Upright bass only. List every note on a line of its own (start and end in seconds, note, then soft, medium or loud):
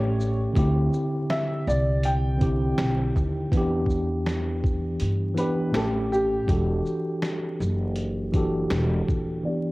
0.00 0.44 A1 medium
0.56 0.87 D2 loud
1.67 2.74 C2 loud
2.79 3.10 B1 medium
3.17 3.47 D#2 medium
3.52 4.96 E2 medium
5.01 5.32 G2 medium
5.75 6.37 A1 medium
6.49 6.80 E1 loud
7.60 8.67 F#1 medium
8.71 9.02 E1 medium
9.09 9.39 D#1 medium